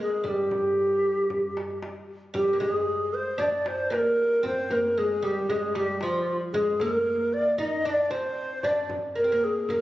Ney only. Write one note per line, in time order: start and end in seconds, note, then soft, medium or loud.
0.02 0.29 G#4 medium
0.28 1.84 G4 medium
2.35 2.59 G4 medium
2.61 3.15 G#4 medium
3.13 3.41 C5 medium
3.40 3.69 D5 medium
3.67 3.94 C5 medium
3.93 4.45 A#4 medium
4.45 4.74 C5 medium
4.72 4.99 A#4 medium
4.98 5.25 G#4 medium
5.24 5.51 G4 medium
5.50 5.77 G#4 medium
5.75 6.00 G4 medium
6.01 6.37 F4 medium
6.53 6.82 G#4 medium
6.80 7.34 A#4 loud
7.33 7.58 D5 medium
7.59 7.87 D#5 medium
7.85 8.05 D5 loud
8.05 8.12 D5 medium
8.11 8.65 C5 loud
8.63 8.89 D5 medium
9.16 9.45 A#4 medium
9.44 9.71 G#4 medium
9.69 9.81 A#4 medium